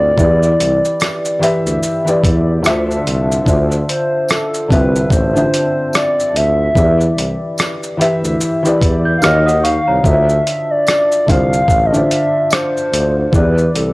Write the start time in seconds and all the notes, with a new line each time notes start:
Already playing: D2 D3 C4 E4 F4 C5 D5
0.16 E2 E3 E4 G4 B4, kick, shaker
0.20 D5
0.43 shaker
0.59 C2, closed hi-hat, shaker
0.85 shaker
1.00 cross-stick, tambourine, shaker
1.25 shaker
1.39 E3 E4 G4 B4, closed hi-hat, shaker
1.44 E5
1.66 D2, shaker
1.83 shaker
2.05 E3 E4 G4 B4, shaker
2.09 D5
2.24 E2, kick, closed hi-hat, shaker
2.63 D2 D3 D4 F4 C5, cross-stick, tambourine, shaker
2.67 E5
2.91 shaker
3.06 C2, closed hi-hat, shaker
3.32 shaker
3.45 D2 D3 D4 F4 C5, kick, shaker
3.49 E5
3.72 shaker
3.89 C5, closed hi-hat, shaker
4.29 A4, cross-stick, tambourine, shaker
4.54 shaker
4.68 C2 D3 C4 D4 F4 B4, kick, closed hi-hat, shaker
4.72 E5
4.96 shaker
5.10 A1 C5, kick, shaker
5.33 D3 D4 F4 C5, shaker
5.38 E5
5.54 closed hi-hat, shaker
5.93 D5, cross-stick, tambourine, shaker
6.20 shaker
6.34 D2 E5, closed hi-hat, shaker
6.74 E2 E3 E4 G4 B4, kick, shaker
6.78 D5
7.01 shaker
7.17 C2, closed hi-hat, shaker
7.58 cross-stick, tambourine, shaker
7.83 shaker
7.97 E3 E4 G4 B4, closed hi-hat, shaker
8.02 E5
8.23 D2, shaker
8.41 shaker
8.63 E3 E4 G4 B4, shaker
8.67 D5
8.81 E2, kick, closed hi-hat, shaker
9.05 G6
9.17 D#3 F5
9.22 D#2 D#4 F#4 C#5 D#5 F5 F6, cross-stick, tambourine, shaker
9.46 F#5 D#6, shaker
9.64 F5 C#6, closed hi-hat, shaker
9.88 C2 C#5 A#5
10.03 D2 D3 D4 F4 C5 E5, kick, shaker
10.07 D#5
10.14 E5
10.29 shaker
10.47 closed hi-hat, shaker
10.70 D5
10.87 cross-stick, tambourine, shaker
11.12 shaker
11.26 C2 D3 D4 F4 C5 F5, kick, closed hi-hat, shaker
11.30 F5
11.53 shaker
11.68 A1, kick, shaker
11.86 D#5
11.91 D3 D4 F4 C5 E5, shaker
11.96 D5
12.11 closed hi-hat, shaker
12.51 C5, cross-stick, tambourine, shaker
12.77 shaker
12.92 D2, closed hi-hat, shaker
13.32 E2 E3 E4 G4 B4, kick, shaker
13.36 D5
13.58 shaker
13.74 C2 A4, closed hi-hat, shaker